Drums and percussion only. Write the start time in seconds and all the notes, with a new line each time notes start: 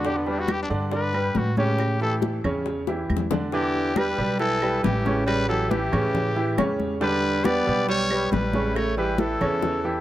0.05 high bongo
0.26 high bongo, high conga
0.48 high bongo, high conga, claves
0.70 high conga
0.91 high bongo, high conga
1.13 high bongo, high conga, claves
1.35 high bongo, low bongo, high conga
1.56 high bongo, high conga
1.79 high bongo, high conga, claves
2.01 high bongo, high conga
2.22 high bongo, high conga
2.44 high conga, low conga, claves
2.66 high bongo, high conga
2.87 high bongo, high conga
3.10 high conga, claves
3.17 low bongo
3.31 low bongo, high conga
3.52 high bongo, high conga
3.75 high bongo, high conga
3.96 high bongo, high conga, claves
4.19 high conga
4.39 high bongo, high conga
4.62 high bongo, high conga, claves
4.84 high bongo, low bongo, high conga
5.05 high bongo, high conga
5.28 high bongo, high conga, claves
5.49 high bongo, high conga
5.71 high bongo, high conga
5.93 high conga, low conga, claves
6.15 high bongo, high conga, low conga
6.36 high bongo, high conga
6.58 high bongo, low bongo, high conga, claves
6.80 high bongo, high conga
7.01 high bongo, high conga
7.23 high bongo, high conga
7.44 high bongo, high conga, claves
7.67 high conga
7.89 high bongo, high conga
8.10 high bongo, high conga, claves
8.32 high bongo, low bongo, high conga
8.53 high bongo, high conga
8.75 high bongo, high conga, claves
8.97 high bongo, high conga
9.18 high bongo, high conga
9.41 high conga, low conga, claves
9.62 high bongo, high conga, low conga
9.85 high conga